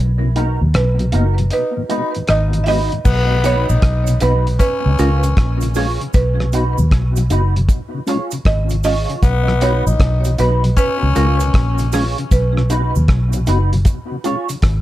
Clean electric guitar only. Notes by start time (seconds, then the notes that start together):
0.36 D#4 F#4 A#4
0.99 muted clean electric guitar stroke
1.12 D#4 F#4 A#4
1.89 D#4 F#4 B4
2.15 muted clean electric guitar stroke
2.67 D#4 F#4 B4
3.44 D#4 F#4 B4
4.08 muted clean electric guitar stroke
4.21 D#4 F#4 B4
4.99 F4 G#4 C#5
5.24 muted clean electric guitar stroke
5.76 F4 G#4 C#5
6.53 D#4 F#4 B4
7.17 muted clean electric guitar stroke
7.30 D#4 F#4 B4
8.07 F4 G#4 C#5
8.32 muted clean electric guitar stroke
8.84 F4 G#4 C#5
9.10 F4 G#4 C#5
9.62 D#4 F#4 B4
10.26 muted clean electric guitar stroke
10.38 D#4 F#4 B4
11.16 F4 G#4 C#5
11.41 muted clean electric guitar stroke
11.93 F4 G#4 C#5
12.70 D#4 F#4 B4
13.34 muted clean electric guitar stroke
13.47 D#4 F#4 B4
14.24 F4 G#4 C#5